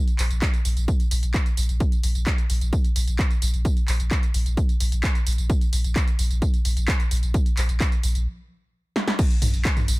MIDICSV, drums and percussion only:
0, 0, Header, 1, 2, 480
1, 0, Start_track
1, 0, Tempo, 461538
1, 1876, Time_signature, 4, 2, 24, 8
1, 10396, End_track
2, 0, Start_track
2, 0, Title_t, "Drums"
2, 78, Note_on_c, 9, 42, 50
2, 78, Note_on_c, 9, 54, 21
2, 182, Note_off_c, 9, 42, 0
2, 182, Note_off_c, 9, 54, 0
2, 196, Note_on_c, 9, 39, 55
2, 196, Note_on_c, 9, 46, 102
2, 196, Note_on_c, 9, 54, 72
2, 300, Note_off_c, 9, 39, 0
2, 300, Note_off_c, 9, 46, 0
2, 300, Note_off_c, 9, 54, 0
2, 318, Note_on_c, 9, 42, 54
2, 318, Note_on_c, 9, 54, 33
2, 422, Note_off_c, 9, 42, 0
2, 422, Note_off_c, 9, 54, 0
2, 436, Note_on_c, 9, 36, 118
2, 436, Note_on_c, 9, 39, 110
2, 436, Note_on_c, 9, 42, 72
2, 436, Note_on_c, 9, 54, 41
2, 540, Note_off_c, 9, 36, 0
2, 540, Note_off_c, 9, 39, 0
2, 540, Note_off_c, 9, 42, 0
2, 540, Note_off_c, 9, 54, 0
2, 558, Note_on_c, 9, 42, 53
2, 558, Note_on_c, 9, 54, 22
2, 662, Note_off_c, 9, 42, 0
2, 662, Note_off_c, 9, 54, 0
2, 677, Note_on_c, 9, 46, 94
2, 677, Note_on_c, 9, 54, 76
2, 781, Note_off_c, 9, 46, 0
2, 781, Note_off_c, 9, 54, 0
2, 798, Note_on_c, 9, 42, 52
2, 798, Note_on_c, 9, 54, 34
2, 902, Note_off_c, 9, 42, 0
2, 902, Note_off_c, 9, 54, 0
2, 916, Note_on_c, 9, 36, 121
2, 916, Note_on_c, 9, 42, 80
2, 916, Note_on_c, 9, 54, 43
2, 1020, Note_off_c, 9, 36, 0
2, 1020, Note_off_c, 9, 42, 0
2, 1020, Note_off_c, 9, 54, 0
2, 1038, Note_on_c, 9, 42, 54
2, 1038, Note_on_c, 9, 54, 22
2, 1142, Note_off_c, 9, 42, 0
2, 1142, Note_off_c, 9, 54, 0
2, 1156, Note_on_c, 9, 46, 115
2, 1156, Note_on_c, 9, 54, 78
2, 1260, Note_off_c, 9, 46, 0
2, 1260, Note_off_c, 9, 54, 0
2, 1278, Note_on_c, 9, 42, 79
2, 1278, Note_on_c, 9, 54, 30
2, 1382, Note_off_c, 9, 42, 0
2, 1382, Note_off_c, 9, 54, 0
2, 1396, Note_on_c, 9, 36, 119
2, 1396, Note_on_c, 9, 39, 112
2, 1396, Note_on_c, 9, 42, 52
2, 1396, Note_on_c, 9, 54, 43
2, 1500, Note_off_c, 9, 36, 0
2, 1500, Note_off_c, 9, 39, 0
2, 1500, Note_off_c, 9, 42, 0
2, 1500, Note_off_c, 9, 54, 0
2, 1518, Note_on_c, 9, 42, 53
2, 1518, Note_on_c, 9, 54, 21
2, 1622, Note_off_c, 9, 42, 0
2, 1622, Note_off_c, 9, 54, 0
2, 1636, Note_on_c, 9, 46, 93
2, 1636, Note_on_c, 9, 54, 77
2, 1697, Note_on_c, 9, 42, 65
2, 1740, Note_off_c, 9, 46, 0
2, 1740, Note_off_c, 9, 54, 0
2, 1758, Note_off_c, 9, 42, 0
2, 1758, Note_on_c, 9, 42, 51
2, 1758, Note_on_c, 9, 54, 30
2, 1862, Note_off_c, 9, 42, 0
2, 1862, Note_off_c, 9, 54, 0
2, 1876, Note_on_c, 9, 36, 123
2, 1876, Note_on_c, 9, 42, 73
2, 1876, Note_on_c, 9, 54, 43
2, 1980, Note_off_c, 9, 36, 0
2, 1980, Note_off_c, 9, 42, 0
2, 1980, Note_off_c, 9, 54, 0
2, 1998, Note_on_c, 9, 42, 50
2, 1998, Note_on_c, 9, 54, 23
2, 2102, Note_off_c, 9, 42, 0
2, 2102, Note_off_c, 9, 54, 0
2, 2116, Note_on_c, 9, 46, 98
2, 2116, Note_on_c, 9, 54, 74
2, 2220, Note_off_c, 9, 46, 0
2, 2220, Note_off_c, 9, 54, 0
2, 2238, Note_on_c, 9, 42, 52
2, 2238, Note_on_c, 9, 54, 34
2, 2342, Note_off_c, 9, 42, 0
2, 2342, Note_off_c, 9, 54, 0
2, 2356, Note_on_c, 9, 36, 116
2, 2356, Note_on_c, 9, 39, 110
2, 2356, Note_on_c, 9, 42, 73
2, 2356, Note_on_c, 9, 54, 42
2, 2460, Note_off_c, 9, 36, 0
2, 2460, Note_off_c, 9, 39, 0
2, 2460, Note_off_c, 9, 42, 0
2, 2460, Note_off_c, 9, 54, 0
2, 2478, Note_on_c, 9, 42, 51
2, 2478, Note_on_c, 9, 54, 23
2, 2582, Note_off_c, 9, 42, 0
2, 2582, Note_off_c, 9, 54, 0
2, 2597, Note_on_c, 9, 46, 91
2, 2597, Note_on_c, 9, 54, 78
2, 2701, Note_off_c, 9, 46, 0
2, 2701, Note_off_c, 9, 54, 0
2, 2718, Note_on_c, 9, 42, 51
2, 2718, Note_on_c, 9, 54, 35
2, 2822, Note_off_c, 9, 42, 0
2, 2822, Note_off_c, 9, 54, 0
2, 2836, Note_on_c, 9, 36, 122
2, 2836, Note_on_c, 9, 42, 75
2, 2836, Note_on_c, 9, 54, 44
2, 2940, Note_off_c, 9, 36, 0
2, 2940, Note_off_c, 9, 42, 0
2, 2940, Note_off_c, 9, 54, 0
2, 2958, Note_on_c, 9, 42, 53
2, 2958, Note_on_c, 9, 54, 23
2, 3062, Note_off_c, 9, 42, 0
2, 3062, Note_off_c, 9, 54, 0
2, 3077, Note_on_c, 9, 46, 114
2, 3077, Note_on_c, 9, 54, 81
2, 3181, Note_off_c, 9, 46, 0
2, 3181, Note_off_c, 9, 54, 0
2, 3198, Note_on_c, 9, 42, 75
2, 3198, Note_on_c, 9, 54, 33
2, 3302, Note_off_c, 9, 42, 0
2, 3302, Note_off_c, 9, 54, 0
2, 3316, Note_on_c, 9, 36, 121
2, 3317, Note_on_c, 9, 39, 110
2, 3317, Note_on_c, 9, 42, 52
2, 3317, Note_on_c, 9, 54, 45
2, 3420, Note_off_c, 9, 36, 0
2, 3421, Note_off_c, 9, 39, 0
2, 3421, Note_off_c, 9, 42, 0
2, 3421, Note_off_c, 9, 54, 0
2, 3438, Note_on_c, 9, 42, 52
2, 3438, Note_on_c, 9, 54, 23
2, 3542, Note_off_c, 9, 42, 0
2, 3542, Note_off_c, 9, 54, 0
2, 3557, Note_on_c, 9, 46, 94
2, 3557, Note_on_c, 9, 54, 79
2, 3618, Note_on_c, 9, 42, 63
2, 3661, Note_off_c, 9, 46, 0
2, 3661, Note_off_c, 9, 54, 0
2, 3678, Note_off_c, 9, 42, 0
2, 3678, Note_on_c, 9, 42, 49
2, 3678, Note_on_c, 9, 54, 32
2, 3782, Note_off_c, 9, 42, 0
2, 3782, Note_off_c, 9, 54, 0
2, 3796, Note_on_c, 9, 36, 112
2, 3797, Note_on_c, 9, 42, 73
2, 3797, Note_on_c, 9, 54, 44
2, 3900, Note_off_c, 9, 36, 0
2, 3901, Note_off_c, 9, 42, 0
2, 3901, Note_off_c, 9, 54, 0
2, 3918, Note_on_c, 9, 42, 53
2, 3918, Note_on_c, 9, 54, 23
2, 4022, Note_off_c, 9, 42, 0
2, 4022, Note_off_c, 9, 54, 0
2, 4037, Note_on_c, 9, 39, 56
2, 4037, Note_on_c, 9, 46, 92
2, 4037, Note_on_c, 9, 54, 73
2, 4141, Note_off_c, 9, 39, 0
2, 4141, Note_off_c, 9, 46, 0
2, 4141, Note_off_c, 9, 54, 0
2, 4158, Note_on_c, 9, 42, 51
2, 4158, Note_on_c, 9, 54, 34
2, 4262, Note_off_c, 9, 42, 0
2, 4262, Note_off_c, 9, 54, 0
2, 4276, Note_on_c, 9, 36, 114
2, 4277, Note_on_c, 9, 39, 109
2, 4277, Note_on_c, 9, 42, 71
2, 4277, Note_on_c, 9, 54, 41
2, 4380, Note_off_c, 9, 36, 0
2, 4381, Note_off_c, 9, 39, 0
2, 4381, Note_off_c, 9, 42, 0
2, 4381, Note_off_c, 9, 54, 0
2, 4398, Note_on_c, 9, 42, 51
2, 4398, Note_on_c, 9, 54, 23
2, 4502, Note_off_c, 9, 42, 0
2, 4502, Note_off_c, 9, 54, 0
2, 4517, Note_on_c, 9, 46, 93
2, 4517, Note_on_c, 9, 54, 78
2, 4621, Note_off_c, 9, 46, 0
2, 4621, Note_off_c, 9, 54, 0
2, 4638, Note_on_c, 9, 42, 53
2, 4638, Note_on_c, 9, 54, 34
2, 4742, Note_off_c, 9, 42, 0
2, 4742, Note_off_c, 9, 54, 0
2, 4756, Note_on_c, 9, 36, 112
2, 4757, Note_on_c, 9, 42, 74
2, 4757, Note_on_c, 9, 54, 45
2, 4860, Note_off_c, 9, 36, 0
2, 4861, Note_off_c, 9, 42, 0
2, 4861, Note_off_c, 9, 54, 0
2, 4878, Note_on_c, 9, 42, 54
2, 4878, Note_on_c, 9, 54, 23
2, 4982, Note_off_c, 9, 42, 0
2, 4982, Note_off_c, 9, 54, 0
2, 4996, Note_on_c, 9, 46, 109
2, 4996, Note_on_c, 9, 54, 81
2, 5100, Note_off_c, 9, 46, 0
2, 5100, Note_off_c, 9, 54, 0
2, 5118, Note_on_c, 9, 42, 75
2, 5118, Note_on_c, 9, 54, 33
2, 5222, Note_off_c, 9, 42, 0
2, 5222, Note_off_c, 9, 54, 0
2, 5236, Note_on_c, 9, 36, 112
2, 5237, Note_on_c, 9, 39, 113
2, 5237, Note_on_c, 9, 42, 52
2, 5237, Note_on_c, 9, 54, 45
2, 5340, Note_off_c, 9, 36, 0
2, 5341, Note_off_c, 9, 39, 0
2, 5341, Note_off_c, 9, 42, 0
2, 5341, Note_off_c, 9, 54, 0
2, 5358, Note_on_c, 9, 42, 49
2, 5358, Note_on_c, 9, 54, 22
2, 5462, Note_off_c, 9, 42, 0
2, 5462, Note_off_c, 9, 54, 0
2, 5476, Note_on_c, 9, 46, 93
2, 5476, Note_on_c, 9, 54, 80
2, 5537, Note_on_c, 9, 42, 66
2, 5580, Note_off_c, 9, 46, 0
2, 5580, Note_off_c, 9, 54, 0
2, 5598, Note_off_c, 9, 42, 0
2, 5598, Note_on_c, 9, 42, 47
2, 5598, Note_on_c, 9, 54, 32
2, 5702, Note_off_c, 9, 42, 0
2, 5702, Note_off_c, 9, 54, 0
2, 5716, Note_on_c, 9, 36, 117
2, 5716, Note_on_c, 9, 42, 77
2, 5716, Note_on_c, 9, 54, 43
2, 5820, Note_off_c, 9, 36, 0
2, 5820, Note_off_c, 9, 42, 0
2, 5820, Note_off_c, 9, 54, 0
2, 5838, Note_on_c, 9, 42, 51
2, 5838, Note_on_c, 9, 54, 22
2, 5942, Note_off_c, 9, 42, 0
2, 5942, Note_off_c, 9, 54, 0
2, 5957, Note_on_c, 9, 46, 96
2, 5957, Note_on_c, 9, 54, 69
2, 6061, Note_off_c, 9, 46, 0
2, 6061, Note_off_c, 9, 54, 0
2, 6078, Note_on_c, 9, 42, 54
2, 6078, Note_on_c, 9, 54, 34
2, 6182, Note_off_c, 9, 42, 0
2, 6182, Note_off_c, 9, 54, 0
2, 6196, Note_on_c, 9, 36, 116
2, 6196, Note_on_c, 9, 39, 115
2, 6196, Note_on_c, 9, 42, 77
2, 6196, Note_on_c, 9, 54, 43
2, 6300, Note_off_c, 9, 36, 0
2, 6300, Note_off_c, 9, 39, 0
2, 6300, Note_off_c, 9, 42, 0
2, 6300, Note_off_c, 9, 54, 0
2, 6318, Note_on_c, 9, 42, 53
2, 6318, Note_on_c, 9, 54, 21
2, 6422, Note_off_c, 9, 42, 0
2, 6422, Note_off_c, 9, 54, 0
2, 6436, Note_on_c, 9, 46, 88
2, 6436, Note_on_c, 9, 54, 76
2, 6540, Note_off_c, 9, 46, 0
2, 6540, Note_off_c, 9, 54, 0
2, 6558, Note_on_c, 9, 42, 54
2, 6558, Note_on_c, 9, 54, 34
2, 6662, Note_off_c, 9, 42, 0
2, 6662, Note_off_c, 9, 54, 0
2, 6676, Note_on_c, 9, 36, 112
2, 6676, Note_on_c, 9, 42, 78
2, 6676, Note_on_c, 9, 54, 42
2, 6780, Note_off_c, 9, 36, 0
2, 6780, Note_off_c, 9, 42, 0
2, 6780, Note_off_c, 9, 54, 0
2, 6798, Note_on_c, 9, 42, 52
2, 6798, Note_on_c, 9, 54, 23
2, 6902, Note_off_c, 9, 42, 0
2, 6902, Note_off_c, 9, 54, 0
2, 6916, Note_on_c, 9, 46, 105
2, 6916, Note_on_c, 9, 54, 82
2, 7020, Note_off_c, 9, 46, 0
2, 7020, Note_off_c, 9, 54, 0
2, 7038, Note_on_c, 9, 42, 76
2, 7038, Note_on_c, 9, 54, 32
2, 7142, Note_off_c, 9, 42, 0
2, 7142, Note_off_c, 9, 54, 0
2, 7156, Note_on_c, 9, 36, 114
2, 7156, Note_on_c, 9, 39, 125
2, 7156, Note_on_c, 9, 42, 53
2, 7156, Note_on_c, 9, 54, 43
2, 7260, Note_off_c, 9, 36, 0
2, 7260, Note_off_c, 9, 39, 0
2, 7260, Note_off_c, 9, 42, 0
2, 7260, Note_off_c, 9, 54, 0
2, 7278, Note_on_c, 9, 42, 53
2, 7278, Note_on_c, 9, 54, 22
2, 7382, Note_off_c, 9, 42, 0
2, 7382, Note_off_c, 9, 54, 0
2, 7396, Note_on_c, 9, 46, 94
2, 7396, Note_on_c, 9, 54, 82
2, 7457, Note_on_c, 9, 42, 62
2, 7500, Note_off_c, 9, 46, 0
2, 7500, Note_off_c, 9, 54, 0
2, 7517, Note_off_c, 9, 42, 0
2, 7517, Note_on_c, 9, 42, 51
2, 7517, Note_on_c, 9, 54, 32
2, 7621, Note_off_c, 9, 42, 0
2, 7621, Note_off_c, 9, 54, 0
2, 7636, Note_on_c, 9, 36, 117
2, 7636, Note_on_c, 9, 42, 83
2, 7636, Note_on_c, 9, 54, 42
2, 7740, Note_off_c, 9, 36, 0
2, 7740, Note_off_c, 9, 42, 0
2, 7740, Note_off_c, 9, 54, 0
2, 7758, Note_on_c, 9, 42, 55
2, 7758, Note_on_c, 9, 54, 22
2, 7862, Note_off_c, 9, 42, 0
2, 7862, Note_off_c, 9, 54, 0
2, 7876, Note_on_c, 9, 39, 63
2, 7876, Note_on_c, 9, 46, 95
2, 7876, Note_on_c, 9, 54, 67
2, 7980, Note_off_c, 9, 39, 0
2, 7980, Note_off_c, 9, 46, 0
2, 7980, Note_off_c, 9, 54, 0
2, 7998, Note_on_c, 9, 42, 54
2, 7998, Note_on_c, 9, 54, 33
2, 8102, Note_off_c, 9, 42, 0
2, 8102, Note_off_c, 9, 54, 0
2, 8116, Note_on_c, 9, 36, 113
2, 8116, Note_on_c, 9, 39, 118
2, 8116, Note_on_c, 9, 42, 75
2, 8116, Note_on_c, 9, 54, 40
2, 8220, Note_off_c, 9, 36, 0
2, 8220, Note_off_c, 9, 39, 0
2, 8220, Note_off_c, 9, 42, 0
2, 8220, Note_off_c, 9, 54, 0
2, 8237, Note_on_c, 9, 42, 55
2, 8237, Note_on_c, 9, 54, 22
2, 8341, Note_off_c, 9, 42, 0
2, 8341, Note_off_c, 9, 54, 0
2, 8356, Note_on_c, 9, 46, 93
2, 8356, Note_on_c, 9, 54, 74
2, 8460, Note_off_c, 9, 46, 0
2, 8460, Note_off_c, 9, 54, 0
2, 8477, Note_on_c, 9, 42, 55
2, 8477, Note_on_c, 9, 54, 33
2, 8581, Note_off_c, 9, 42, 0
2, 8581, Note_off_c, 9, 54, 0
2, 9317, Note_on_c, 9, 38, 65
2, 9421, Note_off_c, 9, 38, 0
2, 9438, Note_on_c, 9, 38, 73
2, 9542, Note_off_c, 9, 38, 0
2, 9556, Note_on_c, 9, 36, 125
2, 9556, Note_on_c, 9, 42, 84
2, 9556, Note_on_c, 9, 49, 104
2, 9556, Note_on_c, 9, 51, 69
2, 9556, Note_on_c, 9, 54, 42
2, 9660, Note_off_c, 9, 36, 0
2, 9660, Note_off_c, 9, 42, 0
2, 9660, Note_off_c, 9, 49, 0
2, 9660, Note_off_c, 9, 51, 0
2, 9660, Note_off_c, 9, 54, 0
2, 9678, Note_on_c, 9, 42, 59
2, 9678, Note_on_c, 9, 54, 20
2, 9782, Note_off_c, 9, 42, 0
2, 9782, Note_off_c, 9, 54, 0
2, 9796, Note_on_c, 9, 45, 60
2, 9796, Note_on_c, 9, 46, 105
2, 9796, Note_on_c, 9, 54, 66
2, 9900, Note_off_c, 9, 45, 0
2, 9900, Note_off_c, 9, 46, 0
2, 9900, Note_off_c, 9, 54, 0
2, 9918, Note_on_c, 9, 42, 58
2, 9918, Note_on_c, 9, 54, 32
2, 10022, Note_off_c, 9, 42, 0
2, 10022, Note_off_c, 9, 54, 0
2, 10036, Note_on_c, 9, 36, 114
2, 10036, Note_on_c, 9, 39, 119
2, 10036, Note_on_c, 9, 42, 78
2, 10036, Note_on_c, 9, 51, 69
2, 10036, Note_on_c, 9, 54, 40
2, 10140, Note_off_c, 9, 36, 0
2, 10140, Note_off_c, 9, 39, 0
2, 10140, Note_off_c, 9, 42, 0
2, 10140, Note_off_c, 9, 51, 0
2, 10140, Note_off_c, 9, 54, 0
2, 10158, Note_on_c, 9, 42, 57
2, 10158, Note_on_c, 9, 45, 66
2, 10158, Note_on_c, 9, 54, 22
2, 10262, Note_off_c, 9, 42, 0
2, 10262, Note_off_c, 9, 45, 0
2, 10262, Note_off_c, 9, 54, 0
2, 10277, Note_on_c, 9, 46, 99
2, 10277, Note_on_c, 9, 54, 75
2, 10381, Note_off_c, 9, 46, 0
2, 10381, Note_off_c, 9, 54, 0
2, 10396, End_track
0, 0, End_of_file